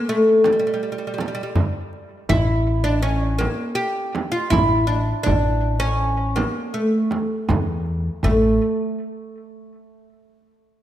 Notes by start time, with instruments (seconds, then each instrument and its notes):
0.07 oud A3, darbuka ka
0.44 oud G3, darbuka tek, frame drum
0.53 oud G3
0.59 oud G3
0.67 oud G3
0.74 oud G3
0.83 oud G3
0.92 oud G3
0.98 oud G3
1.07 oud G3
1.14 oud G3
1.18 oud G3, darbuka tek, frame drum
1.28 oud G3
1.35 oud G3
1.43 oud G3
1.55 frame drum, darbuka dum
1.93 darbuka ka
2.29 upright bass A1, oud E4, frame drum, darbuka dum
2.48 darbuka ka
2.84 oud D4
3.02 oud C#4
3.39 oud A#3, darbuka tek, frame drum
3.75 oud G4
4.15 darbuka tek, frame drum
4.32 oud F4
4.50 upright bass A1, oud E4, darbuka dum, frame drum
4.87 oud D4
5.23 oud D4, frame drum, darbuka dum
5.27 upright bass A1
5.64 darbuka ka
5.80 oud C#4
6.00 darbuka ka
6.36 oud A#3, darbuka tek, frame drum
6.74 oud A3, darbuka ka
7.11 darbuka tek, frame drum
7.49 upright bass E2, frame drum, darbuka dum
7.86 darbuka ka
8.23 upright bass A1, oud A3, frame drum, darbuka dum